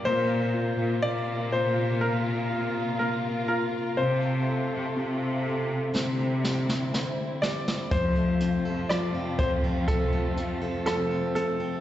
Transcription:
<<
  \new Staff \with { instrumentName = "Grand piano" } { \time 4/4 \key f \major \tempo 4 = 61 c''4 d''8 c''8 bes'4 bes'8 bes'8 | c''2. r8 d''8 | c''4 d''8 c''8 a'4 a'8 a'8 | }
  \new Staff \with { instrumentName = "Felt piano" } { \time 4/4 \key f \major bes8 f'8 bes8 f'8 bes8 f'8 bes8 f'8 | c'8 a'8 c'8 a'8 c'8 g'8 c'8 g'8 | f8 c'8 f8 c'8 f8 c'8 f8 c'8 | }
  \new Staff \with { instrumentName = "Steel-string acoustic guitar" } { \time 4/4 \key f \major r1 | r1 | f,16 a16 c'16 a'16 f16 c'16 a16 c'16 f,16 a16 c'16 a'16 f16 c'16 a16 c'16 | }
  \new Staff \with { instrumentName = "String section" } { \time 4/4 \key f \major << { f'1~ | f'2 e'2 | f'1 | } \\ { <c bes>1 | <c a>2 <d c'>2 | <c a>1 | } >> }
  \new Staff \with { instrumentName = "Cello section" } { \clef bass \time 4/4 \key f \major bes,8. bes,16 bes,2~ bes,8 r8 | c8. c16 c4 c4 r4 | f,8. f,16 f,2~ f,8 r8 | }
  \new DrumStaff \with { instrumentName = "Drums" } \drummode { \time 4/4 r4 r4 r4 r4 | r4 r4 sn8 sn16 sn16 sn8 sn16 sn16 | <hh bd>8 hh8 <hh ss>8 <hh bd>8 <hh bd>8 hh8 <hh ss>8 hh8 | }
>>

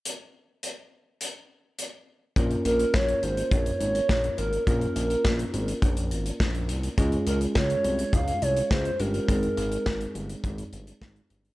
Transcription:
<<
  \new Staff \with { instrumentName = "Soft synth lead" } { \time 4/4 \key bes \dorian \tempo 4 = 104 r1 | r8 bes'8 des''8 c''8 des''4. bes'8 | bes'2 r2 | r8 bes'8 des''4 f''8 des''8 c''8 bes'8~ |
bes'2. r4 | }
  \new Staff \with { instrumentName = "Tine electric piano" } { \time 4/4 \key bes \dorian r1 | <bes des' f' bes'>1 | <bes des' f' bes'>1 | <aes des' f' aes'>2.~ <aes des' f' aes'>8 <aes des' f' g'>8 |
<aes c' ees' aes'>1 | }
  \new Staff \with { instrumentName = "Analog synth bass" } { \clef bass \time 4/4 \key bes \dorian r1 | bes,,8 bes,,8 bes,,8 aes,,8 bes,,8 aes,,8 bes,,8 aes,,8 | bes,,8 bes,,8 bes,,8 aes,,8 bes,,8 aes,,8 bes,,8 c,8 | des,8 des,8 des,8 c,8 des,8 c,8 des,8 g,,8 |
aes,,8 aes,,8 aes,,8 g,,8 aes,,8 g,,8 aes,,8 g,,8 | }
  \new DrumStaff \with { instrumentName = "Drums" } \drummode { \time 4/4 hh4 hh4 hh4 hh4 | <hh bd>16 hh16 hh16 hh16 <bd sn>16 hh16 hh16 hh16 <hh bd>16 hh16 hh16 hh16 <bd sn>16 hh16 hh16 hh16 | <hh bd>16 hh16 hh16 hh16 <bd sn>16 hh16 hh16 hh16 <hh bd>16 hh16 hh16 hh16 <bd sn>16 hh16 hh16 hh16 | <hh bd>16 hh16 hh16 hh16 <bd sn>16 hh16 hh16 hh16 <hh bd>16 hh16 hh16 hh16 <bd sn>16 hh16 hh16 hh16 |
<hh bd>16 hh16 hh16 hh16 <bd sn>16 hh16 hh16 hh16 <hh bd>16 hh16 hh16 hh16 <bd sn>16 hh16 hh16 hh16 | }
>>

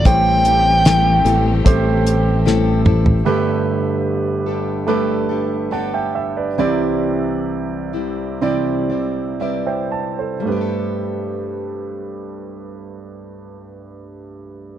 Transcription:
<<
  \new Staff \with { instrumentName = "Lead electric guitar" } { \time 4/4 \key g \major \tempo 4 = 68 g''2.~ g''8 r8 | r1 | r1 | r1 | }
  \new Staff \with { instrumentName = "Grand piano" } { \time 4/4 \key g \major << { r1 | r2. <fis'' a''>16 <e'' g''>16 e''16 <b' d''>16~ | <b' d''>16 r2 r16 d''8 <b' d'' e''>16 <c'' e'' g''>16 a''16 <a' c''>16~ | <a' c''>16 r2. r8. | } \\ { <a g' c''>2 <a g' c''>2 | <a g' b'>2 <a g' b'>2 | <c' e' d''>2 <c' e' d''>2 | <a g' b'>1 | } >> }
  \new Staff \with { instrumentName = "Grand piano" } { \clef bass \time 4/4 \key g \major a,4. r2 r8 | <g,, g,>1 | <c, c>1 | g,1 | }
  \new Staff \with { instrumentName = "Steel-string acoustic guitar" } { \time 4/4 \key g \major <a, e g c' e' a'>8 <g c' e' a'>8 <a, e g c' e' a'>8 <g c' e' a'>8 <g c' e' a'>4 <a, e g c' e' a'>8 <g c' e' a'>8 | <g b d' g' a'>4. <d' g' a'>8 <g b d' g' a'>8 <d' g' a'>8 <b d' g' a'>4 | <c e g c' e' d''>4. <g c' e' d''>8 <c e g c' e' d''>8 <g c' e' d''>8 <g c' e' d''>4 | <g b d' g' a'>1 | }
  \new Staff \with { instrumentName = "String section" } { \time 4/4 \key g \major <e a c' g'>1 | r1 | r1 | r1 | }
  \new Staff \with { instrumentName = "Fingered electric bass" } { \clef bass \time 4/4 \key g \major a,,4. a,,8 a,,2 | r1 | r1 | r1 | }
  \new DrumStaff \with { instrumentName = "Drums" } \drummode { \time 4/4 <hh bd>8 hh8 <hh sn>8 hh8 <hh bd>8 hh8 sn8 toml16 tomfh16 | r4 r4 r4 r4 | r4 r4 r4 r4 | r4 r4 r4 r4 | }
>>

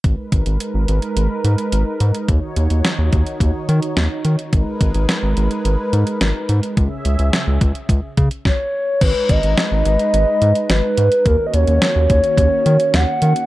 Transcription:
<<
  \new Staff \with { instrumentName = "Soft synth lead" } { \time 4/4 \key gis \minor \tempo 4 = 107 r1 | r1 | r1 | r2. cis''4 |
b'8 dis''4 dis''4. b'4 | ais'16. dis''32 cis''4 cis''4. fis''4 | }
  \new Staff \with { instrumentName = "Analog synth pad" } { \time 4/4 \key gis \minor << { <gis ais' b'>1 | <dis fis' cis''>1 | <gis ais' b'>1 | <cis gis' e''>2. r4 |
<gis b' ais''>1 | <dis cis' fis'>1 | } \\ { dis'1~ | dis'1~ | dis'1 | cis'2. r4 |
dis'1 | ais1 | } >> }
  \new Staff \with { instrumentName = "Analog synth bass" } { \clef bass \time 4/4 \key gis \minor gis,,16 r16 gis,,16 gis,,16 r16 gis,,16 gis,,16 r16 gis,,16 r16 gis,16 r16 gis,,16 r16 gis,16 r16 | dis,16 r16 dis,16 dis,16 r16 dis,16 dis,16 r16 dis,16 r16 dis16 r16 dis,16 r16 dis16 r16 | gis,,16 r16 gis,,16 gis,,16 r16 gis,,16 gis,,16 r16 gis,,16 r16 gis,16 r16 gis,,16 r16 gis,16 r16 | cis,16 r16 cis,16 cis,16 r16 cis,16 cis,16 r16 cis,16 r16 cis16 r4 r16 |
gis,,16 r16 gis,,16 gis,,16 r16 gis,,16 gis,,16 r16 gis,,16 r16 gis,16 r16 gis,,16 r16 gis,16 r16 | dis,16 r16 dis,16 dis,16 r16 dis,16 dis,16 r16 dis,16 r16 dis16 r16 dis,16 r16 dis16 r16 | }
  \new DrumStaff \with { instrumentName = "Drums" } \drummode { \time 4/4 <hh bd>8 <hh bd>16 hh16 hh8 hh16 hh16 hh8 hh16 hh16 hh8 hh16 hh16 | <hh bd>8 hh16 hh16 <hh sn>8 <hh bd>16 hh16 <hh bd>8 hh16 hh16 <hh sn>8 hh16 hh16 | <hh bd>8 <hh bd>16 hh16 <hh sn>8 hh16 hh16 hh8 hh16 hh16 <hh sn>8 hh16 hh16 | <hh bd>8 hh16 hh16 <hh sn>8 <hh bd>16 hh16 <hh bd>8 <hh bd>16 hh16 <bd sn>4 |
<cymc hh bd>8 <hh bd>16 hh16 <hh sn>8 hh16 hh16 hh8 hh16 hh16 <hh sn>8 hh16 hh16 | <hh bd>8 hh16 hh16 <hh sn>8 <hh bd>16 hh16 <hh bd>8 hh16 hh16 <hh sn>8 hh16 hh16 | }
>>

